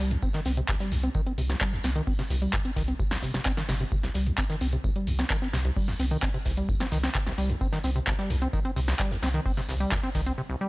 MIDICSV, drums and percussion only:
0, 0, Header, 1, 2, 480
1, 0, Start_track
1, 0, Key_signature, -3, "minor"
1, 0, Tempo, 461538
1, 235, Time_signature, 4, 2, 24, 8
1, 11114, End_track
2, 0, Start_track
2, 0, Title_t, "Drums"
2, 115, Note_on_c, 9, 42, 69
2, 219, Note_off_c, 9, 42, 0
2, 232, Note_on_c, 9, 54, 90
2, 235, Note_on_c, 9, 36, 115
2, 336, Note_off_c, 9, 54, 0
2, 339, Note_off_c, 9, 36, 0
2, 347, Note_on_c, 9, 38, 44
2, 356, Note_off_c, 9, 38, 0
2, 356, Note_on_c, 9, 38, 35
2, 356, Note_on_c, 9, 42, 34
2, 460, Note_off_c, 9, 38, 0
2, 460, Note_off_c, 9, 42, 0
2, 469, Note_on_c, 9, 54, 61
2, 475, Note_on_c, 9, 46, 109
2, 478, Note_on_c, 9, 38, 48
2, 573, Note_off_c, 9, 54, 0
2, 579, Note_off_c, 9, 46, 0
2, 582, Note_off_c, 9, 38, 0
2, 595, Note_on_c, 9, 42, 67
2, 699, Note_off_c, 9, 42, 0
2, 712, Note_on_c, 9, 54, 89
2, 715, Note_on_c, 9, 36, 124
2, 715, Note_on_c, 9, 38, 102
2, 715, Note_on_c, 9, 39, 120
2, 816, Note_off_c, 9, 54, 0
2, 819, Note_off_c, 9, 36, 0
2, 819, Note_off_c, 9, 38, 0
2, 819, Note_off_c, 9, 39, 0
2, 835, Note_on_c, 9, 38, 46
2, 836, Note_on_c, 9, 42, 49
2, 939, Note_off_c, 9, 38, 0
2, 940, Note_off_c, 9, 42, 0
2, 953, Note_on_c, 9, 54, 63
2, 955, Note_on_c, 9, 46, 110
2, 1057, Note_off_c, 9, 54, 0
2, 1059, Note_off_c, 9, 46, 0
2, 1075, Note_on_c, 9, 42, 68
2, 1179, Note_off_c, 9, 42, 0
2, 1192, Note_on_c, 9, 54, 85
2, 1195, Note_on_c, 9, 36, 122
2, 1296, Note_off_c, 9, 54, 0
2, 1299, Note_off_c, 9, 36, 0
2, 1315, Note_on_c, 9, 42, 53
2, 1419, Note_off_c, 9, 42, 0
2, 1435, Note_on_c, 9, 46, 109
2, 1439, Note_on_c, 9, 54, 62
2, 1539, Note_off_c, 9, 46, 0
2, 1543, Note_off_c, 9, 54, 0
2, 1556, Note_on_c, 9, 38, 78
2, 1556, Note_on_c, 9, 42, 61
2, 1660, Note_off_c, 9, 38, 0
2, 1660, Note_off_c, 9, 42, 0
2, 1675, Note_on_c, 9, 36, 123
2, 1676, Note_on_c, 9, 39, 118
2, 1677, Note_on_c, 9, 54, 88
2, 1680, Note_on_c, 9, 38, 123
2, 1779, Note_off_c, 9, 36, 0
2, 1780, Note_off_c, 9, 39, 0
2, 1781, Note_off_c, 9, 54, 0
2, 1784, Note_off_c, 9, 38, 0
2, 1797, Note_on_c, 9, 38, 39
2, 1901, Note_off_c, 9, 38, 0
2, 1907, Note_on_c, 9, 54, 61
2, 1916, Note_on_c, 9, 38, 58
2, 1916, Note_on_c, 9, 46, 110
2, 2011, Note_off_c, 9, 54, 0
2, 2020, Note_off_c, 9, 38, 0
2, 2020, Note_off_c, 9, 46, 0
2, 2032, Note_on_c, 9, 42, 39
2, 2036, Note_off_c, 9, 42, 0
2, 2036, Note_on_c, 9, 42, 63
2, 2140, Note_off_c, 9, 42, 0
2, 2156, Note_on_c, 9, 36, 121
2, 2157, Note_on_c, 9, 46, 76
2, 2260, Note_off_c, 9, 36, 0
2, 2261, Note_off_c, 9, 46, 0
2, 2277, Note_on_c, 9, 38, 35
2, 2277, Note_on_c, 9, 42, 32
2, 2381, Note_off_c, 9, 38, 0
2, 2381, Note_off_c, 9, 42, 0
2, 2395, Note_on_c, 9, 38, 44
2, 2396, Note_on_c, 9, 46, 107
2, 2400, Note_on_c, 9, 54, 73
2, 2499, Note_off_c, 9, 38, 0
2, 2500, Note_off_c, 9, 46, 0
2, 2504, Note_off_c, 9, 54, 0
2, 2516, Note_on_c, 9, 42, 65
2, 2620, Note_off_c, 9, 42, 0
2, 2631, Note_on_c, 9, 38, 122
2, 2633, Note_on_c, 9, 54, 85
2, 2636, Note_on_c, 9, 36, 124
2, 2636, Note_on_c, 9, 39, 116
2, 2735, Note_off_c, 9, 38, 0
2, 2737, Note_off_c, 9, 54, 0
2, 2740, Note_off_c, 9, 36, 0
2, 2740, Note_off_c, 9, 39, 0
2, 2756, Note_on_c, 9, 42, 49
2, 2860, Note_off_c, 9, 42, 0
2, 2876, Note_on_c, 9, 36, 63
2, 2876, Note_on_c, 9, 46, 105
2, 2881, Note_on_c, 9, 54, 65
2, 2882, Note_on_c, 9, 38, 39
2, 2980, Note_off_c, 9, 36, 0
2, 2980, Note_off_c, 9, 46, 0
2, 2985, Note_off_c, 9, 54, 0
2, 2986, Note_off_c, 9, 38, 0
2, 2996, Note_on_c, 9, 42, 66
2, 3100, Note_off_c, 9, 42, 0
2, 3115, Note_on_c, 9, 36, 124
2, 3119, Note_on_c, 9, 54, 90
2, 3219, Note_off_c, 9, 36, 0
2, 3223, Note_off_c, 9, 54, 0
2, 3236, Note_on_c, 9, 38, 91
2, 3236, Note_on_c, 9, 42, 51
2, 3340, Note_off_c, 9, 38, 0
2, 3340, Note_off_c, 9, 42, 0
2, 3353, Note_on_c, 9, 54, 61
2, 3354, Note_on_c, 9, 38, 42
2, 3355, Note_on_c, 9, 36, 60
2, 3356, Note_on_c, 9, 46, 110
2, 3457, Note_off_c, 9, 54, 0
2, 3458, Note_off_c, 9, 38, 0
2, 3459, Note_off_c, 9, 36, 0
2, 3460, Note_off_c, 9, 46, 0
2, 3473, Note_on_c, 9, 38, 38
2, 3476, Note_off_c, 9, 38, 0
2, 3476, Note_on_c, 9, 38, 82
2, 3476, Note_on_c, 9, 42, 61
2, 3580, Note_off_c, 9, 38, 0
2, 3580, Note_off_c, 9, 42, 0
2, 3588, Note_on_c, 9, 38, 115
2, 3595, Note_on_c, 9, 39, 114
2, 3596, Note_on_c, 9, 36, 122
2, 3601, Note_on_c, 9, 54, 80
2, 3692, Note_off_c, 9, 38, 0
2, 3699, Note_off_c, 9, 39, 0
2, 3700, Note_off_c, 9, 36, 0
2, 3705, Note_off_c, 9, 54, 0
2, 3716, Note_on_c, 9, 38, 62
2, 3820, Note_off_c, 9, 38, 0
2, 3834, Note_on_c, 9, 54, 69
2, 3835, Note_on_c, 9, 38, 60
2, 3835, Note_on_c, 9, 46, 108
2, 3938, Note_off_c, 9, 54, 0
2, 3939, Note_off_c, 9, 38, 0
2, 3939, Note_off_c, 9, 46, 0
2, 3956, Note_on_c, 9, 46, 62
2, 4060, Note_off_c, 9, 46, 0
2, 4076, Note_on_c, 9, 36, 117
2, 4077, Note_on_c, 9, 54, 90
2, 4180, Note_off_c, 9, 36, 0
2, 4181, Note_off_c, 9, 54, 0
2, 4193, Note_on_c, 9, 38, 47
2, 4196, Note_off_c, 9, 38, 0
2, 4196, Note_on_c, 9, 38, 37
2, 4196, Note_on_c, 9, 42, 34
2, 4300, Note_off_c, 9, 38, 0
2, 4300, Note_off_c, 9, 42, 0
2, 4309, Note_on_c, 9, 38, 44
2, 4311, Note_on_c, 9, 54, 70
2, 4315, Note_on_c, 9, 46, 104
2, 4413, Note_off_c, 9, 38, 0
2, 4415, Note_off_c, 9, 54, 0
2, 4419, Note_off_c, 9, 46, 0
2, 4436, Note_on_c, 9, 42, 65
2, 4540, Note_off_c, 9, 42, 0
2, 4550, Note_on_c, 9, 54, 81
2, 4554, Note_on_c, 9, 38, 120
2, 4555, Note_on_c, 9, 39, 108
2, 4556, Note_on_c, 9, 36, 116
2, 4654, Note_off_c, 9, 54, 0
2, 4658, Note_off_c, 9, 38, 0
2, 4659, Note_off_c, 9, 39, 0
2, 4660, Note_off_c, 9, 36, 0
2, 4676, Note_on_c, 9, 42, 50
2, 4679, Note_on_c, 9, 38, 45
2, 4780, Note_off_c, 9, 42, 0
2, 4783, Note_off_c, 9, 38, 0
2, 4792, Note_on_c, 9, 54, 66
2, 4795, Note_on_c, 9, 46, 108
2, 4896, Note_off_c, 9, 54, 0
2, 4899, Note_off_c, 9, 46, 0
2, 4915, Note_on_c, 9, 42, 64
2, 5019, Note_off_c, 9, 42, 0
2, 5036, Note_on_c, 9, 36, 119
2, 5036, Note_on_c, 9, 54, 89
2, 5140, Note_off_c, 9, 36, 0
2, 5140, Note_off_c, 9, 54, 0
2, 5156, Note_on_c, 9, 42, 52
2, 5260, Note_off_c, 9, 42, 0
2, 5272, Note_on_c, 9, 54, 69
2, 5275, Note_on_c, 9, 46, 100
2, 5376, Note_off_c, 9, 54, 0
2, 5379, Note_off_c, 9, 46, 0
2, 5396, Note_on_c, 9, 38, 85
2, 5396, Note_on_c, 9, 42, 60
2, 5500, Note_off_c, 9, 38, 0
2, 5500, Note_off_c, 9, 42, 0
2, 5516, Note_on_c, 9, 36, 122
2, 5516, Note_on_c, 9, 39, 114
2, 5518, Note_on_c, 9, 54, 81
2, 5521, Note_on_c, 9, 38, 111
2, 5620, Note_off_c, 9, 36, 0
2, 5620, Note_off_c, 9, 39, 0
2, 5622, Note_off_c, 9, 54, 0
2, 5625, Note_off_c, 9, 38, 0
2, 5638, Note_on_c, 9, 38, 43
2, 5742, Note_off_c, 9, 38, 0
2, 5755, Note_on_c, 9, 38, 65
2, 5755, Note_on_c, 9, 46, 106
2, 5757, Note_on_c, 9, 54, 69
2, 5859, Note_off_c, 9, 38, 0
2, 5859, Note_off_c, 9, 46, 0
2, 5861, Note_off_c, 9, 54, 0
2, 5874, Note_on_c, 9, 42, 39
2, 5876, Note_off_c, 9, 42, 0
2, 5876, Note_on_c, 9, 42, 61
2, 5980, Note_off_c, 9, 42, 0
2, 5996, Note_on_c, 9, 36, 112
2, 6001, Note_on_c, 9, 46, 85
2, 6100, Note_off_c, 9, 36, 0
2, 6105, Note_off_c, 9, 46, 0
2, 6116, Note_on_c, 9, 38, 38
2, 6116, Note_on_c, 9, 42, 36
2, 6220, Note_off_c, 9, 38, 0
2, 6220, Note_off_c, 9, 42, 0
2, 6235, Note_on_c, 9, 46, 105
2, 6237, Note_on_c, 9, 38, 47
2, 6240, Note_on_c, 9, 54, 65
2, 6339, Note_off_c, 9, 46, 0
2, 6341, Note_off_c, 9, 38, 0
2, 6344, Note_off_c, 9, 54, 0
2, 6356, Note_on_c, 9, 42, 66
2, 6460, Note_off_c, 9, 42, 0
2, 6471, Note_on_c, 9, 54, 94
2, 6473, Note_on_c, 9, 38, 108
2, 6476, Note_on_c, 9, 36, 114
2, 6476, Note_on_c, 9, 39, 108
2, 6575, Note_off_c, 9, 54, 0
2, 6577, Note_off_c, 9, 38, 0
2, 6580, Note_off_c, 9, 36, 0
2, 6580, Note_off_c, 9, 39, 0
2, 6596, Note_on_c, 9, 42, 50
2, 6700, Note_off_c, 9, 42, 0
2, 6710, Note_on_c, 9, 38, 36
2, 6715, Note_on_c, 9, 46, 103
2, 6716, Note_on_c, 9, 36, 58
2, 6718, Note_on_c, 9, 54, 68
2, 6814, Note_off_c, 9, 38, 0
2, 6819, Note_off_c, 9, 46, 0
2, 6820, Note_off_c, 9, 36, 0
2, 6822, Note_off_c, 9, 54, 0
2, 6836, Note_on_c, 9, 42, 68
2, 6940, Note_off_c, 9, 42, 0
2, 6956, Note_on_c, 9, 36, 116
2, 6962, Note_on_c, 9, 54, 78
2, 7060, Note_off_c, 9, 36, 0
2, 7066, Note_off_c, 9, 54, 0
2, 7076, Note_on_c, 9, 38, 88
2, 7076, Note_on_c, 9, 42, 53
2, 7180, Note_off_c, 9, 38, 0
2, 7180, Note_off_c, 9, 42, 0
2, 7193, Note_on_c, 9, 54, 72
2, 7195, Note_on_c, 9, 38, 43
2, 7195, Note_on_c, 9, 46, 97
2, 7297, Note_off_c, 9, 54, 0
2, 7299, Note_off_c, 9, 38, 0
2, 7299, Note_off_c, 9, 46, 0
2, 7314, Note_on_c, 9, 38, 43
2, 7317, Note_off_c, 9, 38, 0
2, 7317, Note_on_c, 9, 38, 85
2, 7317, Note_on_c, 9, 42, 63
2, 7421, Note_off_c, 9, 38, 0
2, 7421, Note_off_c, 9, 42, 0
2, 7435, Note_on_c, 9, 36, 114
2, 7436, Note_on_c, 9, 38, 122
2, 7436, Note_on_c, 9, 39, 114
2, 7440, Note_on_c, 9, 54, 95
2, 7539, Note_off_c, 9, 36, 0
2, 7540, Note_off_c, 9, 38, 0
2, 7540, Note_off_c, 9, 39, 0
2, 7544, Note_off_c, 9, 54, 0
2, 7556, Note_on_c, 9, 38, 64
2, 7660, Note_off_c, 9, 38, 0
2, 7675, Note_on_c, 9, 46, 102
2, 7684, Note_on_c, 9, 54, 72
2, 7779, Note_off_c, 9, 46, 0
2, 7788, Note_off_c, 9, 54, 0
2, 7796, Note_on_c, 9, 42, 65
2, 7900, Note_off_c, 9, 42, 0
2, 7915, Note_on_c, 9, 36, 105
2, 7917, Note_on_c, 9, 54, 87
2, 8019, Note_off_c, 9, 36, 0
2, 8021, Note_off_c, 9, 54, 0
2, 8033, Note_on_c, 9, 38, 41
2, 8036, Note_off_c, 9, 38, 0
2, 8036, Note_on_c, 9, 38, 36
2, 8036, Note_on_c, 9, 42, 37
2, 8140, Note_off_c, 9, 38, 0
2, 8140, Note_off_c, 9, 42, 0
2, 8149, Note_on_c, 9, 54, 64
2, 8155, Note_on_c, 9, 46, 98
2, 8157, Note_on_c, 9, 38, 43
2, 8253, Note_off_c, 9, 54, 0
2, 8259, Note_off_c, 9, 46, 0
2, 8261, Note_off_c, 9, 38, 0
2, 8275, Note_on_c, 9, 42, 68
2, 8379, Note_off_c, 9, 42, 0
2, 8390, Note_on_c, 9, 38, 114
2, 8395, Note_on_c, 9, 36, 110
2, 8396, Note_on_c, 9, 39, 111
2, 8396, Note_on_c, 9, 54, 79
2, 8494, Note_off_c, 9, 38, 0
2, 8499, Note_off_c, 9, 36, 0
2, 8500, Note_off_c, 9, 39, 0
2, 8500, Note_off_c, 9, 54, 0
2, 8516, Note_on_c, 9, 42, 51
2, 8521, Note_on_c, 9, 38, 47
2, 8620, Note_off_c, 9, 42, 0
2, 8625, Note_off_c, 9, 38, 0
2, 8631, Note_on_c, 9, 54, 66
2, 8635, Note_on_c, 9, 46, 97
2, 8735, Note_off_c, 9, 54, 0
2, 8739, Note_off_c, 9, 46, 0
2, 8756, Note_on_c, 9, 42, 71
2, 8860, Note_off_c, 9, 42, 0
2, 8874, Note_on_c, 9, 54, 98
2, 8875, Note_on_c, 9, 36, 108
2, 8978, Note_off_c, 9, 54, 0
2, 8979, Note_off_c, 9, 36, 0
2, 8996, Note_on_c, 9, 42, 58
2, 9100, Note_off_c, 9, 42, 0
2, 9115, Note_on_c, 9, 46, 97
2, 9117, Note_on_c, 9, 54, 63
2, 9219, Note_off_c, 9, 46, 0
2, 9221, Note_off_c, 9, 54, 0
2, 9236, Note_on_c, 9, 38, 82
2, 9236, Note_on_c, 9, 42, 66
2, 9340, Note_off_c, 9, 38, 0
2, 9340, Note_off_c, 9, 42, 0
2, 9348, Note_on_c, 9, 54, 83
2, 9352, Note_on_c, 9, 38, 127
2, 9355, Note_on_c, 9, 36, 115
2, 9355, Note_on_c, 9, 39, 115
2, 9452, Note_off_c, 9, 54, 0
2, 9456, Note_off_c, 9, 38, 0
2, 9459, Note_off_c, 9, 36, 0
2, 9459, Note_off_c, 9, 39, 0
2, 9477, Note_on_c, 9, 38, 41
2, 9581, Note_off_c, 9, 38, 0
2, 9594, Note_on_c, 9, 54, 72
2, 9595, Note_on_c, 9, 38, 62
2, 9595, Note_on_c, 9, 46, 99
2, 9698, Note_off_c, 9, 54, 0
2, 9699, Note_off_c, 9, 38, 0
2, 9699, Note_off_c, 9, 46, 0
2, 9715, Note_on_c, 9, 42, 68
2, 9719, Note_off_c, 9, 42, 0
2, 9719, Note_on_c, 9, 42, 44
2, 9823, Note_off_c, 9, 42, 0
2, 9835, Note_on_c, 9, 36, 108
2, 9837, Note_on_c, 9, 46, 85
2, 9939, Note_off_c, 9, 36, 0
2, 9941, Note_off_c, 9, 46, 0
2, 9956, Note_on_c, 9, 38, 36
2, 9956, Note_on_c, 9, 42, 39
2, 10060, Note_off_c, 9, 38, 0
2, 10060, Note_off_c, 9, 42, 0
2, 10074, Note_on_c, 9, 46, 100
2, 10076, Note_on_c, 9, 54, 66
2, 10079, Note_on_c, 9, 38, 47
2, 10178, Note_off_c, 9, 46, 0
2, 10180, Note_off_c, 9, 54, 0
2, 10183, Note_off_c, 9, 38, 0
2, 10195, Note_on_c, 9, 42, 70
2, 10299, Note_off_c, 9, 42, 0
2, 10314, Note_on_c, 9, 38, 60
2, 10315, Note_on_c, 9, 36, 111
2, 10315, Note_on_c, 9, 39, 121
2, 10316, Note_on_c, 9, 54, 90
2, 10320, Note_off_c, 9, 38, 0
2, 10320, Note_on_c, 9, 38, 110
2, 10419, Note_off_c, 9, 36, 0
2, 10419, Note_off_c, 9, 39, 0
2, 10420, Note_off_c, 9, 54, 0
2, 10424, Note_off_c, 9, 38, 0
2, 10435, Note_on_c, 9, 42, 51
2, 10539, Note_off_c, 9, 42, 0
2, 10554, Note_on_c, 9, 46, 101
2, 10555, Note_on_c, 9, 36, 58
2, 10558, Note_on_c, 9, 38, 38
2, 10559, Note_on_c, 9, 54, 66
2, 10658, Note_off_c, 9, 46, 0
2, 10659, Note_off_c, 9, 36, 0
2, 10662, Note_off_c, 9, 38, 0
2, 10663, Note_off_c, 9, 54, 0
2, 10675, Note_on_c, 9, 42, 71
2, 10779, Note_off_c, 9, 42, 0
2, 11114, End_track
0, 0, End_of_file